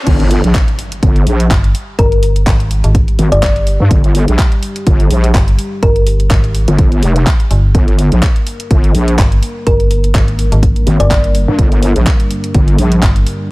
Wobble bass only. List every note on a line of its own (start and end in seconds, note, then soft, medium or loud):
0.07 0.42 G1 loud
0.44 0.53 A#1 loud
1.03 1.25 G1 loud
1.27 1.49 A#1 loud
3.19 3.30 G#1 loud
3.80 3.89 G2 loud
3.91 4.26 G1 loud
4.28 4.37 A#1 loud
4.87 5.09 G1 loud
5.11 5.33 A#1 loud
6.68 7.01 G1 loud
7.03 7.25 F1 loud
7.75 8.10 G1 loud
8.12 8.21 A#1 loud
8.71 8.93 G1 loud
8.95 9.17 A#1 loud
10.87 10.98 G#1 loud
11.48 11.57 G2 loud
11.59 11.94 G1 loud
11.96 12.05 A#1 loud
12.55 12.77 G1 loud
12.79 13.01 A#1 loud